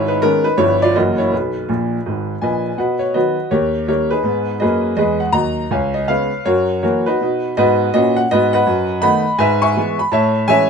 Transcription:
Already playing: G#1 G#2 E4 C#5
0.08 D#4 B4
0.21 D#3 G#3 B3 C#4 A#4
0.44 D#4 B4
0.58 G1 G2 F3 B3 E4 C#5
0.82 F4 D5
0.96 F#1 F#2 E3 F#3 A#3 F#4 D#5
1.18 E4 C#5
1.33 B1 B2 D#4 B4
1.68 A#1 A#2
2.06 G#1 G#2
2.42 A#1 A#2 B4 D#5 G#5
2.78 B2 B4 D#5 F#5
2.99 C#5
3.14 D#3 F#3 B3 F#4 B4 D#5
3.51 D#2 G4 A#4 C#5
3.88 D#3 G3 A#3 G4 A#4 C#5
4.11 D#4 G#4 B4
4.23 G#2 B3
4.60 F#2 A#3 G#4 B4 D#5
4.97 E2 G#3 G#4 B4 D#5
5.20 F#5
5.32 D#2 F#3 D#5 A#5
5.71 C#2 C#5 F5 G#5
5.94 D#5
6.08 C#3 G#3 B3 B4 C#5 F5
6.45 F#2 F#4 A#4 C#5
6.83 E3 F#3 A#3 F#4 A#4 C#5
7.06 D#4 F#4 B4
7.21 B2 D#4
7.57 G#2 B3 F#4 B4 D#5
7.94 A#2 C#4 F#4 B4 D#5
8.16 F#5
8.31 G#2 B3 F#4 B4 D#5
8.53 B4 D#5 F#5
8.67 F#2
9.02 D#3 A3 B3 D#5 F#5 B5
9.39 G#2 B4 E5 G#5
9.62 E5 G#5 C#6
9.77 E3 G#3 B3
9.99 B5
10.12 A2 C#5 E5 A5
10.48 E3 G#3 C#4 C#5 E5 G#5

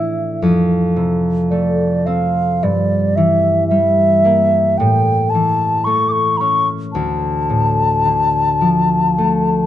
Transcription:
Already playing: A2 E3 D4 E4 E5
0.42 F2
0.96 C3
1.50 A3 D5
2.06 C4 F5
2.63 G2 D5
3.16 E3 E5
3.67 G3 E5
4.25 A#3
4.78 A2 G5
5.30 A5
5.34 E3
5.84 A3 C#6
6.09 C#6 D6
6.37 C#4 A#5 C#6
6.92 D2 A5
7.50 A2
8.05 D3
8.61 F3
9.18 A3

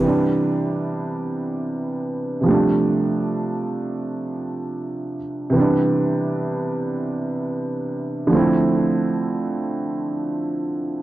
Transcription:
Already playing: C3
0.00 E3 G3
0.05 B3 D4
2.41 C3 F3
2.45 G3 A3
2.50 D4
5.50 C3 E3
5.55 G3 B3
5.60 D4
8.27 D3 F3
8.32 A3 C4
8.37 E4

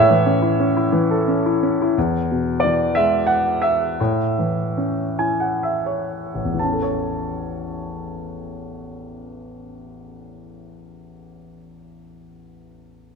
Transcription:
Already playing: A2 C#5 E5
0.10 E3
0.26 C#4
0.42 E4
0.60 C#4
0.77 E4
0.92 E3
1.11 A4
1.28 C#4
1.46 E4
1.63 C#4
1.82 E4
1.98 E2
2.31 B2
2.60 D5
2.64 E3
2.95 G#3 E5
3.27 F#5
3.62 E5
4.00 A2
4.39 E3
4.77 C#4
5.19 E4 G#5
5.40 F#5
5.63 E5
5.86 C#5
6.35 A1
6.44 E2
6.53 E3
6.59 A5
6.64 C#4
6.73 A4
6.82 C#5

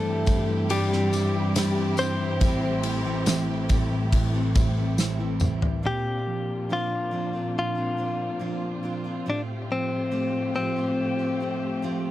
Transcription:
Already playing: G2 E3 G3 A3 C4 E4 G4 A4
0.07 E3
0.25 G2 G3 C4 E4 G4, kick, ride, tambourine
0.46 E3 C4 E4 G4
0.69 G2 G3 G4, ride, tambourine
0.89 E3 C4 E4 G4, snare
1.12 G2 G3 C4 E4 G4, ride, tambourine
1.36 E3
1.54 G2 G3 C4 E4 G4, snare, ride, tambourine
1.75 E3 C4 E4 G4
1.97 G2 G3 C4 E4 G4 C5, ride, tambourine
2.22 E3
2.40 A1 A2 E3 G3 A3 C4 E4 A4, kick, ride, tambourine
2.64 E3
2.83 A2, ride
3.05 E3 G3 C4 E4 A4
3.25 A2 E3 G3 C4 E4 A4, snare, ride, tambourine
3.49 E3
3.69 A2 G3 C4 E4 A4, kick, ride, tambourine
3.91 E3
4.13 A1 A2, kick, ride, tambourine
4.33 E3 G3 C4 E4 A4
4.54 A2 G3 C4 E4 A4, kick, ride, tambourine
4.77 E3 G3 C4 E4 A4
4.98 A2 E3 G3 C4 E4 A4, snare, tambourine
5.18 E3 G3 C4 E4 A4
5.40 A2 G3 C4 E4 A4, mid tom, tambourine
5.62 E3, floor tom
5.83 A#2 A#3 C4 D4 F4 G4
6.27 F3
6.69 A#2 A#3 C4 D4 F4
7.11 F3 A#3 C4 D4 F4
7.33 C4 D4 F4
7.55 D4 F4
7.75 C4 D4 F4
7.97 A#3 C4 D4 F4
8.39 A#2 F3 A#3 C4 D4 F4
8.83 A#3 C4 D4 F4
9.04 C4 D4 F4
9.26 A2 A3 C4 D4 F4 G4
9.71 F3 C4
10.11 A3 C4 F4 G4
10.54 F3 A3 C4 F4 G4
10.76 C4 F4 G4
11.00 A3
11.19 C4 F4 G4
11.40 A3 C4 F4 G4
11.82 F3 A3 C4 F4 G4

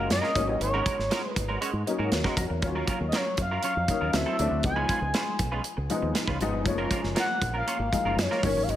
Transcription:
Already playing: G#3 A#3 C#4 F4 F#4
0.10 F#2 D#5, muted clean electric guitar stroke, snare, closed hi-hat
0.22 A#3 C#4 F4 A#4, snare
0.35 G#1 F#3 A#3 C#4 D#4, kick, closed hi-hat
0.48 A1, muted clean electric guitar stroke
0.60 G#1 C#5, muted clean electric guitar stroke, closed hi-hat
0.74 G#3 C#4 F#4 A#4
0.86 G#3 C#4 F#4 A#4, kick, closed hi-hat
0.98 G#1, muted clean electric guitar stroke, snare
1.10 G#3 C#4 F#4 A#4, snare, closed hi-hat
1.24 muted clean electric guitar stroke
1.30 B4
1.36 G#1, muted clean electric guitar stroke, kick, closed hi-hat
1.48 G#3 C#4 F#4 A#4
1.61 G#3 C#4 F#4 C#5, closed hi-hat
1.73 G#2, muted clean electric guitar stroke
1.86 F#3 A#3 C#4 D#4, muted clean electric guitar stroke, closed hi-hat
1.99 G#2 G#3 C#4 F#4 A#4
2.12 D#2 D#4 F#4 F#5, snare, closed hi-hat
2.24 G#3 C#4 F#4 A#4, kick, snare
2.36 F2 F#4 A#4 A#5, muted clean electric guitar stroke, kick, closed hi-hat
2.50 E2, muted clean electric guitar stroke
2.62 D#2 F3 A#3 C#4 F4, muted clean electric guitar stroke, kick, closed hi-hat
2.68 F#3
2.75 F#3 C#4 F4 A#4
2.87 F#3 C#4 F4 A#4, kick, closed hi-hat
3.00 D#2, muted clean electric guitar stroke
3.08 D#5, closed hi-hat
3.13 F#3 C#4 F4 A#4 C#5, snare
3.27 muted clean electric guitar stroke
3.37 F#2, muted clean electric guitar stroke, kick, closed hi-hat
3.42 F5
3.51 F#3 C#4 F4 A#4
3.63 F#3 C#4 F4 C#5, closed hi-hat
3.76 F2, muted clean electric guitar stroke
3.88 F#3 A#3 C#4 D#4, muted clean electric guitar stroke, kick, closed hi-hat
4.01 D#2 F#3 C#4 F4 A#4
4.13 D2 F#3 A3 C4 E4 E5, muted clean electric guitar stroke, snare, closed hi-hat
4.26 F#3 C4 E4 A4
4.39 D2 F#3 A3 C4 D4, closed hi-hat
4.51 D2, muted clean electric guitar stroke
4.63 C#2 F3 G#3 B3 D#4 G#5, muted clean electric guitar stroke, kick, closed hi-hat
4.76 G#3 C#4 F4 B4
4.89 G#3 C#4 F4 B4, kick, closed hi-hat
5.02 C#2, muted clean electric guitar stroke
5.14 G#3 C#4 F4 B4, snare, closed hi-hat
5.26 muted clean electric guitar stroke
5.39 B1, muted clean electric guitar stroke, kick, closed hi-hat
5.52 G#3 C#4 F4 B4
5.64 muted clean electric guitar stroke, closed hi-hat
5.77 C#2, muted clean electric guitar stroke
5.90 F3 G#3 B3 D#4, closed hi-hat
6.02 D#2, muted clean electric guitar stroke
6.14 muted clean electric guitar stroke, snare, closed hi-hat
6.27 C#2 G#3 C#4 F4 B4, kick
6.40 G#1 F3 G#3 B3 D#4, muted clean electric guitar stroke, closed hi-hat
6.53 G1, muted clean electric guitar stroke
6.65 F#1 F3 G#3 A3 C#4, muted clean electric guitar stroke, kick, closed hi-hat
6.72 A#3
6.78 A#3 C#4 F4 A#4
6.90 A#3 C#4 F4 A#4, kick, closed hi-hat
7.03 F#1, muted clean electric guitar stroke, snare
7.15 A#3 C#4 F4 A#4 F#5, snare, closed hi-hat
7.29 muted clean electric guitar stroke
7.41 A#1, muted clean electric guitar stroke, kick, closed hi-hat
7.54 A#3 C#4 F4 A#4 F5
7.67 A#3 C#4 F4 C#5, closed hi-hat
7.79 G#1, muted clean electric guitar stroke
7.92 F3 G#3 A#3 D#4, muted clean electric guitar stroke, kick, closed hi-hat
8.05 F#1 A#3 C#4 F4 A#4
8.16 F#2, snare, closed hi-hat
8.20 C#5
8.31 A#3 C#4 F4 A#4, snare
8.43 G#1 D#3 F#3 A#3 C#4, kick, open hi-hat
8.55 A1, muted clean electric guitar stroke
8.63 F5
8.67 G#1 D#5, muted clean electric guitar stroke, closed hi-hat

